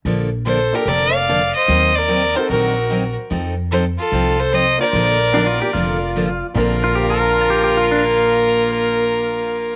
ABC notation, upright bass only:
X:1
M:4/4
L:1/8
Q:"Swing" 1/4=148
K:Bb
V:1 name="Upright bass" clef=bass
B,,,4 F,,,4 | E,,4 B,,,4 | F,,4 C,,4 | B,,,4 F,,,4 |
B,,,8- | B,,,8 |]